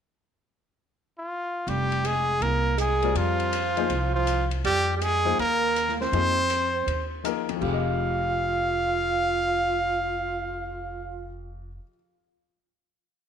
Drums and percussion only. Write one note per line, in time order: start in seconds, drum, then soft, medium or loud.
1.68 ride medium
1.92 ride soft
2.05 hi-hat pedal medium
2.05 ride medium
2.42 ride medium
2.78 hi-hat pedal medium
2.78 ride medium
3.02 ride soft
3.15 ride medium
3.40 ride soft
3.53 hi-hat pedal medium
3.53 ride medium
3.77 ride soft
3.90 ride medium
4.27 hi-hat pedal medium
4.27 ride medium
4.51 ride soft
4.64 ride medium
5.01 hi-hat pedal medium
5.01 ride medium
5.39 ride medium
5.76 hi-hat pedal medium
5.76 ride medium
5.88 snare soft
6.01 snare soft
6.13 ride medium
6.50 hi-hat pedal medium
6.50 ride medium
6.88 ride medium
7.25 hi-hat pedal medium
7.25 ride medium
7.49 ride soft
7.62 kick soft
7.62 crash medium